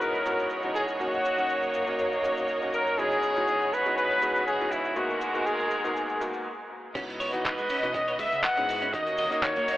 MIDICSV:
0, 0, Header, 1, 8, 480
1, 0, Start_track
1, 0, Tempo, 495868
1, 969, Time_signature, 4, 2, 24, 8
1, 9460, End_track
2, 0, Start_track
2, 0, Title_t, "Trumpet section"
2, 0, Program_c, 0, 61
2, 11, Note_on_c, 0, 70, 84
2, 490, Note_off_c, 0, 70, 0
2, 724, Note_on_c, 0, 68, 91
2, 833, Note_off_c, 0, 68, 0
2, 969, Note_on_c, 0, 66, 99
2, 1890, Note_off_c, 0, 66, 0
2, 2646, Note_on_c, 0, 70, 90
2, 2870, Note_off_c, 0, 70, 0
2, 2889, Note_on_c, 0, 68, 99
2, 3609, Note_off_c, 0, 68, 0
2, 3613, Note_on_c, 0, 71, 97
2, 3839, Note_off_c, 0, 71, 0
2, 3851, Note_on_c, 0, 71, 101
2, 4296, Note_off_c, 0, 71, 0
2, 4332, Note_on_c, 0, 68, 88
2, 4570, Note_off_c, 0, 68, 0
2, 4570, Note_on_c, 0, 64, 81
2, 4810, Note_off_c, 0, 64, 0
2, 4810, Note_on_c, 0, 66, 89
2, 5289, Note_off_c, 0, 66, 0
2, 5290, Note_on_c, 0, 68, 85
2, 6009, Note_off_c, 0, 68, 0
2, 7207, Note_on_c, 0, 71, 95
2, 7654, Note_off_c, 0, 71, 0
2, 7686, Note_on_c, 0, 75, 100
2, 7911, Note_off_c, 0, 75, 0
2, 7925, Note_on_c, 0, 76, 95
2, 8167, Note_off_c, 0, 76, 0
2, 8169, Note_on_c, 0, 78, 114
2, 8615, Note_off_c, 0, 78, 0
2, 8647, Note_on_c, 0, 75, 106
2, 9128, Note_off_c, 0, 75, 0
2, 9130, Note_on_c, 0, 73, 98
2, 9460, Note_off_c, 0, 73, 0
2, 9460, End_track
3, 0, Start_track
3, 0, Title_t, "Violin section"
3, 0, Program_c, 1, 48
3, 0, Note_on_c, 1, 66, 65
3, 0, Note_on_c, 1, 73, 77
3, 0, Note_on_c, 1, 75, 66
3, 962, Note_on_c, 1, 58, 72
3, 2849, Note_off_c, 1, 66, 0
3, 2866, Note_off_c, 1, 58, 0
3, 2881, Note_on_c, 1, 66, 68
3, 4769, Note_off_c, 1, 73, 0
3, 4770, Note_off_c, 1, 75, 0
3, 4812, Note_on_c, 1, 70, 85
3, 4813, Note_on_c, 1, 56, 73
3, 6211, Note_off_c, 1, 66, 0
3, 6236, Note_off_c, 1, 56, 0
3, 6236, Note_off_c, 1, 70, 0
3, 6732, Note_on_c, 1, 59, 80
3, 6732, Note_on_c, 1, 75, 92
3, 6734, Note_on_c, 1, 66, 77
3, 8631, Note_off_c, 1, 59, 0
3, 8631, Note_off_c, 1, 75, 0
3, 8648, Note_on_c, 1, 63, 77
3, 8649, Note_on_c, 1, 73, 88
3, 8650, Note_on_c, 1, 58, 83
3, 9460, Note_off_c, 1, 58, 0
3, 9460, Note_off_c, 1, 63, 0
3, 9460, Note_off_c, 1, 66, 0
3, 9460, Note_off_c, 1, 73, 0
3, 9460, End_track
4, 0, Start_track
4, 0, Title_t, "Electric grand piano"
4, 0, Program_c, 2, 2
4, 0, Note_on_c, 2, 49, 70
4, 0, Note_on_c, 2, 56, 68
4, 0, Note_on_c, 2, 59, 66
4, 0, Note_on_c, 2, 63, 68
4, 0, Note_on_c, 2, 64, 69
4, 0, Note_on_c, 2, 66, 81
4, 218, Note_off_c, 2, 49, 0
4, 220, Note_off_c, 2, 56, 0
4, 221, Note_off_c, 2, 59, 0
4, 221, Note_off_c, 2, 63, 0
4, 222, Note_off_c, 2, 64, 0
4, 223, Note_off_c, 2, 66, 0
4, 244, Note_on_c, 2, 56, 64
4, 245, Note_on_c, 2, 49, 69
4, 248, Note_on_c, 2, 59, 64
4, 249, Note_on_c, 2, 63, 64
4, 252, Note_on_c, 2, 64, 64
4, 253, Note_on_c, 2, 66, 76
4, 585, Note_off_c, 2, 49, 0
4, 585, Note_off_c, 2, 56, 0
4, 587, Note_off_c, 2, 59, 0
4, 587, Note_off_c, 2, 63, 0
4, 589, Note_off_c, 2, 64, 0
4, 589, Note_off_c, 2, 66, 0
4, 616, Note_on_c, 2, 49, 73
4, 618, Note_on_c, 2, 56, 65
4, 619, Note_on_c, 2, 59, 64
4, 621, Note_on_c, 2, 63, 66
4, 623, Note_on_c, 2, 64, 66
4, 624, Note_on_c, 2, 66, 78
4, 941, Note_off_c, 2, 49, 0
4, 942, Note_off_c, 2, 56, 0
4, 943, Note_off_c, 2, 59, 0
4, 944, Note_off_c, 2, 63, 0
4, 945, Note_off_c, 2, 64, 0
4, 945, Note_off_c, 2, 66, 0
4, 964, Note_on_c, 2, 58, 77
4, 968, Note_on_c, 2, 61, 71
4, 971, Note_on_c, 2, 63, 72
4, 975, Note_on_c, 2, 66, 85
4, 1305, Note_off_c, 2, 58, 0
4, 1307, Note_off_c, 2, 61, 0
4, 1308, Note_off_c, 2, 63, 0
4, 1310, Note_off_c, 2, 66, 0
4, 1335, Note_on_c, 2, 58, 76
4, 1338, Note_on_c, 2, 61, 67
4, 1342, Note_on_c, 2, 63, 68
4, 1346, Note_on_c, 2, 66, 79
4, 1785, Note_off_c, 2, 58, 0
4, 1787, Note_off_c, 2, 61, 0
4, 1789, Note_off_c, 2, 63, 0
4, 1791, Note_off_c, 2, 66, 0
4, 1809, Note_on_c, 2, 58, 71
4, 1813, Note_on_c, 2, 61, 67
4, 1816, Note_on_c, 2, 63, 68
4, 1819, Note_on_c, 2, 66, 81
4, 2138, Note_off_c, 2, 58, 0
4, 2140, Note_off_c, 2, 61, 0
4, 2141, Note_off_c, 2, 63, 0
4, 2143, Note_off_c, 2, 66, 0
4, 2163, Note_on_c, 2, 58, 73
4, 2166, Note_on_c, 2, 61, 63
4, 2169, Note_on_c, 2, 63, 65
4, 2171, Note_on_c, 2, 66, 80
4, 2504, Note_off_c, 2, 58, 0
4, 2505, Note_off_c, 2, 61, 0
4, 2507, Note_off_c, 2, 63, 0
4, 2508, Note_off_c, 2, 66, 0
4, 2534, Note_on_c, 2, 58, 73
4, 2537, Note_on_c, 2, 61, 66
4, 2540, Note_on_c, 2, 63, 67
4, 2544, Note_on_c, 2, 66, 77
4, 2860, Note_off_c, 2, 58, 0
4, 2862, Note_off_c, 2, 61, 0
4, 2863, Note_off_c, 2, 63, 0
4, 2865, Note_off_c, 2, 66, 0
4, 2881, Note_on_c, 2, 49, 76
4, 2883, Note_on_c, 2, 56, 71
4, 2886, Note_on_c, 2, 63, 69
4, 2887, Note_on_c, 2, 59, 72
4, 2889, Note_on_c, 2, 64, 72
4, 2890, Note_on_c, 2, 66, 84
4, 3223, Note_off_c, 2, 49, 0
4, 3224, Note_off_c, 2, 56, 0
4, 3226, Note_off_c, 2, 59, 0
4, 3226, Note_off_c, 2, 63, 0
4, 3227, Note_off_c, 2, 64, 0
4, 3228, Note_off_c, 2, 66, 0
4, 3253, Note_on_c, 2, 49, 73
4, 3255, Note_on_c, 2, 56, 69
4, 3258, Note_on_c, 2, 59, 68
4, 3260, Note_on_c, 2, 63, 69
4, 3261, Note_on_c, 2, 64, 68
4, 3262, Note_on_c, 2, 66, 85
4, 3704, Note_off_c, 2, 49, 0
4, 3706, Note_off_c, 2, 56, 0
4, 3707, Note_off_c, 2, 59, 0
4, 3708, Note_off_c, 2, 63, 0
4, 3708, Note_off_c, 2, 64, 0
4, 3709, Note_off_c, 2, 66, 0
4, 3729, Note_on_c, 2, 49, 74
4, 3732, Note_on_c, 2, 56, 72
4, 3732, Note_on_c, 2, 59, 70
4, 3734, Note_on_c, 2, 63, 70
4, 3737, Note_on_c, 2, 64, 67
4, 3740, Note_on_c, 2, 66, 81
4, 4058, Note_off_c, 2, 49, 0
4, 4059, Note_off_c, 2, 56, 0
4, 4059, Note_off_c, 2, 59, 0
4, 4061, Note_off_c, 2, 63, 0
4, 4062, Note_off_c, 2, 64, 0
4, 4063, Note_off_c, 2, 66, 0
4, 4084, Note_on_c, 2, 49, 69
4, 4085, Note_on_c, 2, 56, 65
4, 4087, Note_on_c, 2, 59, 63
4, 4090, Note_on_c, 2, 63, 66
4, 4092, Note_on_c, 2, 64, 63
4, 4094, Note_on_c, 2, 66, 77
4, 4425, Note_off_c, 2, 49, 0
4, 4425, Note_off_c, 2, 56, 0
4, 4426, Note_off_c, 2, 59, 0
4, 4428, Note_off_c, 2, 63, 0
4, 4429, Note_off_c, 2, 64, 0
4, 4429, Note_off_c, 2, 66, 0
4, 4450, Note_on_c, 2, 49, 72
4, 4454, Note_on_c, 2, 56, 66
4, 4454, Note_on_c, 2, 59, 67
4, 4458, Note_on_c, 2, 63, 66
4, 4458, Note_on_c, 2, 64, 67
4, 4460, Note_on_c, 2, 66, 82
4, 4778, Note_off_c, 2, 49, 0
4, 4780, Note_off_c, 2, 59, 0
4, 4781, Note_off_c, 2, 56, 0
4, 4782, Note_off_c, 2, 63, 0
4, 4782, Note_off_c, 2, 64, 0
4, 4783, Note_off_c, 2, 66, 0
4, 4801, Note_on_c, 2, 44, 79
4, 4804, Note_on_c, 2, 58, 73
4, 4806, Note_on_c, 2, 59, 73
4, 4810, Note_on_c, 2, 63, 72
4, 4811, Note_on_c, 2, 66, 87
4, 5143, Note_off_c, 2, 44, 0
4, 5145, Note_off_c, 2, 58, 0
4, 5145, Note_off_c, 2, 59, 0
4, 5147, Note_off_c, 2, 63, 0
4, 5148, Note_off_c, 2, 66, 0
4, 5173, Note_on_c, 2, 44, 77
4, 5175, Note_on_c, 2, 58, 72
4, 5177, Note_on_c, 2, 59, 72
4, 5179, Note_on_c, 2, 63, 68
4, 5184, Note_on_c, 2, 66, 82
4, 5624, Note_off_c, 2, 44, 0
4, 5626, Note_off_c, 2, 58, 0
4, 5627, Note_off_c, 2, 59, 0
4, 5627, Note_off_c, 2, 63, 0
4, 5630, Note_off_c, 2, 66, 0
4, 5653, Note_on_c, 2, 44, 76
4, 5654, Note_on_c, 2, 58, 68
4, 5658, Note_on_c, 2, 59, 70
4, 5659, Note_on_c, 2, 63, 69
4, 5663, Note_on_c, 2, 66, 84
4, 5980, Note_off_c, 2, 44, 0
4, 5980, Note_off_c, 2, 58, 0
4, 5982, Note_off_c, 2, 59, 0
4, 5983, Note_off_c, 2, 63, 0
4, 5985, Note_off_c, 2, 66, 0
4, 6003, Note_on_c, 2, 44, 70
4, 6005, Note_on_c, 2, 58, 67
4, 6008, Note_on_c, 2, 59, 65
4, 6011, Note_on_c, 2, 63, 67
4, 6013, Note_on_c, 2, 66, 81
4, 6246, Note_off_c, 2, 44, 0
4, 6247, Note_off_c, 2, 58, 0
4, 6248, Note_off_c, 2, 59, 0
4, 6250, Note_off_c, 2, 63, 0
4, 6251, Note_off_c, 2, 66, 0
4, 6726, Note_on_c, 2, 59, 86
4, 6730, Note_on_c, 2, 63, 78
4, 6732, Note_on_c, 2, 64, 78
4, 6736, Note_on_c, 2, 66, 96
4, 7066, Note_off_c, 2, 59, 0
4, 7068, Note_off_c, 2, 63, 0
4, 7069, Note_off_c, 2, 64, 0
4, 7071, Note_off_c, 2, 66, 0
4, 7094, Note_on_c, 2, 59, 84
4, 7097, Note_on_c, 2, 63, 77
4, 7100, Note_on_c, 2, 52, 75
4, 7104, Note_on_c, 2, 66, 92
4, 7545, Note_off_c, 2, 59, 0
4, 7546, Note_off_c, 2, 63, 0
4, 7548, Note_off_c, 2, 52, 0
4, 7550, Note_off_c, 2, 66, 0
4, 7573, Note_on_c, 2, 59, 81
4, 7577, Note_on_c, 2, 63, 76
4, 7579, Note_on_c, 2, 52, 79
4, 7583, Note_on_c, 2, 66, 91
4, 7900, Note_off_c, 2, 59, 0
4, 7902, Note_off_c, 2, 63, 0
4, 7903, Note_off_c, 2, 52, 0
4, 7905, Note_off_c, 2, 66, 0
4, 8290, Note_on_c, 2, 59, 74
4, 8293, Note_on_c, 2, 63, 70
4, 8298, Note_on_c, 2, 64, 69
4, 8300, Note_on_c, 2, 68, 80
4, 8618, Note_off_c, 2, 59, 0
4, 8620, Note_off_c, 2, 63, 0
4, 8622, Note_off_c, 2, 64, 0
4, 8624, Note_off_c, 2, 68, 0
4, 8639, Note_on_c, 2, 58, 86
4, 8640, Note_on_c, 2, 61, 75
4, 8645, Note_on_c, 2, 63, 79
4, 8649, Note_on_c, 2, 66, 98
4, 8982, Note_off_c, 2, 58, 0
4, 8983, Note_off_c, 2, 61, 0
4, 8985, Note_off_c, 2, 63, 0
4, 8987, Note_off_c, 2, 66, 0
4, 9005, Note_on_c, 2, 58, 84
4, 9006, Note_on_c, 2, 61, 74
4, 9010, Note_on_c, 2, 63, 74
4, 9014, Note_on_c, 2, 66, 96
4, 9460, Note_off_c, 2, 58, 0
4, 9460, Note_off_c, 2, 61, 0
4, 9460, Note_off_c, 2, 63, 0
4, 9460, Note_off_c, 2, 66, 0
4, 9460, End_track
5, 0, Start_track
5, 0, Title_t, "Clean electric guitar"
5, 0, Program_c, 3, 27
5, 6729, Note_on_c, 3, 61, 102
5, 6793, Note_off_c, 3, 61, 0
5, 6970, Note_on_c, 3, 73, 80
5, 7066, Note_off_c, 3, 73, 0
5, 7211, Note_on_c, 3, 63, 82
5, 7307, Note_off_c, 3, 63, 0
5, 7341, Note_on_c, 3, 56, 73
5, 7423, Note_off_c, 3, 56, 0
5, 7449, Note_on_c, 3, 61, 75
5, 7546, Note_off_c, 3, 61, 0
5, 7576, Note_on_c, 3, 61, 105
5, 7610, Note_off_c, 3, 61, 0
5, 7688, Note_on_c, 3, 61, 100
5, 7753, Note_off_c, 3, 61, 0
5, 7819, Note_on_c, 3, 73, 80
5, 7852, Note_off_c, 3, 73, 0
5, 7930, Note_on_c, 3, 56, 75
5, 7994, Note_off_c, 3, 56, 0
5, 8300, Note_on_c, 3, 61, 79
5, 8354, Note_off_c, 3, 61, 0
5, 8538, Note_on_c, 3, 61, 104
5, 8571, Note_off_c, 3, 61, 0
5, 8652, Note_on_c, 3, 63, 104
5, 8715, Note_off_c, 3, 63, 0
5, 8892, Note_on_c, 3, 75, 78
5, 8987, Note_off_c, 3, 75, 0
5, 9134, Note_on_c, 3, 63, 83
5, 9228, Note_off_c, 3, 63, 0
5, 9261, Note_on_c, 3, 58, 75
5, 9343, Note_off_c, 3, 58, 0
5, 9369, Note_on_c, 3, 63, 77
5, 9460, Note_off_c, 3, 63, 0
5, 9460, End_track
6, 0, Start_track
6, 0, Title_t, "Fingered electric bass"
6, 0, Program_c, 4, 33
6, 6731, Note_on_c, 4, 37, 95
6, 7052, Note_off_c, 4, 37, 0
6, 7209, Note_on_c, 4, 37, 97
6, 7309, Note_off_c, 4, 37, 0
6, 7581, Note_on_c, 4, 47, 81
6, 7891, Note_off_c, 4, 47, 0
6, 7930, Note_on_c, 4, 37, 86
6, 8030, Note_off_c, 4, 37, 0
6, 8060, Note_on_c, 4, 49, 80
6, 8145, Note_off_c, 4, 49, 0
6, 8297, Note_on_c, 4, 44, 92
6, 8608, Note_off_c, 4, 44, 0
6, 8650, Note_on_c, 4, 39, 101
6, 8972, Note_off_c, 4, 39, 0
6, 9128, Note_on_c, 4, 39, 102
6, 9228, Note_off_c, 4, 39, 0
6, 9460, End_track
7, 0, Start_track
7, 0, Title_t, "Muted fingered electric bass strokes"
7, 7103, Note_on_c, 9, 29, 44
7, 7199, Note_off_c, 9, 29, 0
7, 9015, Note_on_c, 9, 29, 42
7, 9112, Note_off_c, 9, 29, 0
7, 9372, Note_on_c, 9, 29, 43
7, 9460, Note_off_c, 9, 29, 0
7, 9460, End_track
8, 0, Start_track
8, 0, Title_t, "Drums"
8, 13, Note_on_c, 9, 69, 52
8, 110, Note_off_c, 9, 69, 0
8, 145, Note_on_c, 9, 69, 23
8, 241, Note_off_c, 9, 69, 0
8, 249, Note_on_c, 9, 69, 75
8, 346, Note_off_c, 9, 69, 0
8, 381, Note_on_c, 9, 69, 35
8, 478, Note_off_c, 9, 69, 0
8, 483, Note_on_c, 9, 69, 47
8, 580, Note_off_c, 9, 69, 0
8, 603, Note_on_c, 9, 69, 21
8, 700, Note_off_c, 9, 69, 0
8, 731, Note_on_c, 9, 69, 81
8, 828, Note_off_c, 9, 69, 0
8, 853, Note_on_c, 9, 69, 34
8, 950, Note_off_c, 9, 69, 0
8, 972, Note_on_c, 9, 69, 46
8, 1069, Note_off_c, 9, 69, 0
8, 1100, Note_on_c, 9, 69, 23
8, 1197, Note_off_c, 9, 69, 0
8, 1212, Note_on_c, 9, 69, 73
8, 1308, Note_off_c, 9, 69, 0
8, 1337, Note_on_c, 9, 69, 33
8, 1434, Note_off_c, 9, 69, 0
8, 1449, Note_on_c, 9, 69, 41
8, 1546, Note_off_c, 9, 69, 0
8, 1576, Note_on_c, 9, 69, 24
8, 1673, Note_off_c, 9, 69, 0
8, 1684, Note_on_c, 9, 69, 77
8, 1780, Note_off_c, 9, 69, 0
8, 1810, Note_on_c, 9, 69, 34
8, 1907, Note_off_c, 9, 69, 0
8, 1925, Note_on_c, 9, 69, 47
8, 2021, Note_off_c, 9, 69, 0
8, 2054, Note_on_c, 9, 69, 23
8, 2151, Note_off_c, 9, 69, 0
8, 2171, Note_on_c, 9, 69, 81
8, 2268, Note_off_c, 9, 69, 0
8, 2297, Note_on_c, 9, 69, 37
8, 2394, Note_off_c, 9, 69, 0
8, 2401, Note_on_c, 9, 69, 47
8, 2498, Note_off_c, 9, 69, 0
8, 2535, Note_on_c, 9, 69, 21
8, 2632, Note_off_c, 9, 69, 0
8, 2647, Note_on_c, 9, 69, 78
8, 2744, Note_off_c, 9, 69, 0
8, 2774, Note_on_c, 9, 69, 30
8, 2871, Note_off_c, 9, 69, 0
8, 2890, Note_on_c, 9, 69, 43
8, 2987, Note_off_c, 9, 69, 0
8, 3015, Note_on_c, 9, 69, 22
8, 3111, Note_off_c, 9, 69, 0
8, 3125, Note_on_c, 9, 69, 75
8, 3222, Note_off_c, 9, 69, 0
8, 3257, Note_on_c, 9, 69, 35
8, 3354, Note_off_c, 9, 69, 0
8, 3364, Note_on_c, 9, 69, 48
8, 3461, Note_off_c, 9, 69, 0
8, 3501, Note_on_c, 9, 69, 21
8, 3597, Note_off_c, 9, 69, 0
8, 3616, Note_on_c, 9, 69, 78
8, 3713, Note_off_c, 9, 69, 0
8, 3733, Note_on_c, 9, 69, 32
8, 3830, Note_off_c, 9, 69, 0
8, 3851, Note_on_c, 9, 69, 51
8, 3947, Note_off_c, 9, 69, 0
8, 3976, Note_on_c, 9, 69, 21
8, 4073, Note_off_c, 9, 69, 0
8, 4085, Note_on_c, 9, 69, 84
8, 4182, Note_off_c, 9, 69, 0
8, 4217, Note_on_c, 9, 69, 30
8, 4314, Note_off_c, 9, 69, 0
8, 4332, Note_on_c, 9, 69, 44
8, 4429, Note_off_c, 9, 69, 0
8, 4464, Note_on_c, 9, 69, 21
8, 4560, Note_off_c, 9, 69, 0
8, 4567, Note_on_c, 9, 69, 81
8, 4664, Note_off_c, 9, 69, 0
8, 4692, Note_on_c, 9, 69, 31
8, 4789, Note_off_c, 9, 69, 0
8, 4802, Note_on_c, 9, 69, 43
8, 4898, Note_off_c, 9, 69, 0
8, 4938, Note_on_c, 9, 69, 22
8, 5035, Note_off_c, 9, 69, 0
8, 5045, Note_on_c, 9, 69, 82
8, 5142, Note_off_c, 9, 69, 0
8, 5175, Note_on_c, 9, 69, 37
8, 5272, Note_off_c, 9, 69, 0
8, 5290, Note_on_c, 9, 69, 49
8, 5387, Note_off_c, 9, 69, 0
8, 5418, Note_on_c, 9, 69, 24
8, 5515, Note_off_c, 9, 69, 0
8, 5525, Note_on_c, 9, 69, 72
8, 5622, Note_off_c, 9, 69, 0
8, 5660, Note_on_c, 9, 69, 34
8, 5757, Note_off_c, 9, 69, 0
8, 5774, Note_on_c, 9, 69, 51
8, 5871, Note_off_c, 9, 69, 0
8, 5898, Note_on_c, 9, 69, 23
8, 5995, Note_off_c, 9, 69, 0
8, 6014, Note_on_c, 9, 69, 82
8, 6111, Note_off_c, 9, 69, 0
8, 6133, Note_on_c, 9, 69, 35
8, 6230, Note_off_c, 9, 69, 0
8, 6726, Note_on_c, 9, 49, 101
8, 6730, Note_on_c, 9, 36, 116
8, 6733, Note_on_c, 9, 42, 100
8, 6735, Note_on_c, 9, 69, 54
8, 6823, Note_off_c, 9, 49, 0
8, 6827, Note_off_c, 9, 36, 0
8, 6829, Note_off_c, 9, 42, 0
8, 6832, Note_off_c, 9, 69, 0
8, 6860, Note_on_c, 9, 69, 28
8, 6874, Note_on_c, 9, 42, 55
8, 6957, Note_off_c, 9, 69, 0
8, 6970, Note_off_c, 9, 42, 0
8, 6972, Note_on_c, 9, 46, 112
8, 6975, Note_on_c, 9, 69, 86
8, 7069, Note_off_c, 9, 46, 0
8, 7072, Note_off_c, 9, 69, 0
8, 7095, Note_on_c, 9, 42, 58
8, 7096, Note_on_c, 9, 69, 41
8, 7192, Note_off_c, 9, 42, 0
8, 7193, Note_off_c, 9, 69, 0
8, 7209, Note_on_c, 9, 36, 119
8, 7209, Note_on_c, 9, 42, 94
8, 7215, Note_on_c, 9, 69, 50
8, 7222, Note_on_c, 9, 39, 127
8, 7306, Note_off_c, 9, 36, 0
8, 7306, Note_off_c, 9, 42, 0
8, 7312, Note_off_c, 9, 69, 0
8, 7319, Note_off_c, 9, 39, 0
8, 7335, Note_on_c, 9, 42, 54
8, 7345, Note_on_c, 9, 69, 29
8, 7432, Note_off_c, 9, 42, 0
8, 7442, Note_off_c, 9, 69, 0
8, 7448, Note_on_c, 9, 69, 94
8, 7454, Note_on_c, 9, 46, 115
8, 7544, Note_off_c, 9, 69, 0
8, 7550, Note_off_c, 9, 46, 0
8, 7583, Note_on_c, 9, 69, 38
8, 7586, Note_on_c, 9, 42, 59
8, 7679, Note_off_c, 9, 69, 0
8, 7683, Note_off_c, 9, 42, 0
8, 7688, Note_on_c, 9, 42, 105
8, 7689, Note_on_c, 9, 36, 127
8, 7693, Note_on_c, 9, 69, 56
8, 7784, Note_off_c, 9, 42, 0
8, 7786, Note_off_c, 9, 36, 0
8, 7790, Note_off_c, 9, 69, 0
8, 7817, Note_on_c, 9, 69, 27
8, 7824, Note_on_c, 9, 42, 58
8, 7914, Note_off_c, 9, 69, 0
8, 7920, Note_off_c, 9, 42, 0
8, 7929, Note_on_c, 9, 36, 61
8, 7929, Note_on_c, 9, 46, 112
8, 7930, Note_on_c, 9, 69, 100
8, 8025, Note_off_c, 9, 46, 0
8, 8026, Note_off_c, 9, 36, 0
8, 8026, Note_off_c, 9, 69, 0
8, 8057, Note_on_c, 9, 42, 58
8, 8064, Note_on_c, 9, 69, 36
8, 8154, Note_off_c, 9, 42, 0
8, 8161, Note_off_c, 9, 69, 0
8, 8166, Note_on_c, 9, 39, 127
8, 8169, Note_on_c, 9, 36, 115
8, 8169, Note_on_c, 9, 69, 57
8, 8171, Note_on_c, 9, 42, 110
8, 8263, Note_off_c, 9, 39, 0
8, 8266, Note_off_c, 9, 36, 0
8, 8266, Note_off_c, 9, 69, 0
8, 8268, Note_off_c, 9, 42, 0
8, 8293, Note_on_c, 9, 42, 54
8, 8302, Note_on_c, 9, 69, 25
8, 8390, Note_off_c, 9, 42, 0
8, 8399, Note_off_c, 9, 69, 0
8, 8411, Note_on_c, 9, 46, 112
8, 8423, Note_on_c, 9, 69, 94
8, 8507, Note_off_c, 9, 46, 0
8, 8519, Note_off_c, 9, 69, 0
8, 8536, Note_on_c, 9, 69, 35
8, 8537, Note_on_c, 9, 42, 61
8, 8633, Note_off_c, 9, 69, 0
8, 8634, Note_off_c, 9, 42, 0
8, 8649, Note_on_c, 9, 36, 124
8, 8649, Note_on_c, 9, 42, 104
8, 8651, Note_on_c, 9, 69, 50
8, 8746, Note_off_c, 9, 36, 0
8, 8746, Note_off_c, 9, 42, 0
8, 8748, Note_off_c, 9, 69, 0
8, 8776, Note_on_c, 9, 42, 59
8, 8784, Note_on_c, 9, 69, 29
8, 8873, Note_off_c, 9, 42, 0
8, 8881, Note_off_c, 9, 69, 0
8, 8882, Note_on_c, 9, 69, 94
8, 8892, Note_on_c, 9, 46, 113
8, 8979, Note_off_c, 9, 69, 0
8, 8989, Note_off_c, 9, 46, 0
8, 9019, Note_on_c, 9, 69, 37
8, 9020, Note_on_c, 9, 42, 56
8, 9116, Note_off_c, 9, 69, 0
8, 9117, Note_off_c, 9, 42, 0
8, 9129, Note_on_c, 9, 36, 123
8, 9129, Note_on_c, 9, 39, 113
8, 9129, Note_on_c, 9, 69, 50
8, 9132, Note_on_c, 9, 42, 97
8, 9226, Note_off_c, 9, 36, 0
8, 9226, Note_off_c, 9, 39, 0
8, 9226, Note_off_c, 9, 69, 0
8, 9229, Note_off_c, 9, 42, 0
8, 9256, Note_on_c, 9, 42, 56
8, 9256, Note_on_c, 9, 69, 25
8, 9353, Note_off_c, 9, 42, 0
8, 9353, Note_off_c, 9, 69, 0
8, 9369, Note_on_c, 9, 69, 106
8, 9373, Note_on_c, 9, 46, 119
8, 9460, Note_off_c, 9, 46, 0
8, 9460, Note_off_c, 9, 69, 0
8, 9460, End_track
0, 0, End_of_file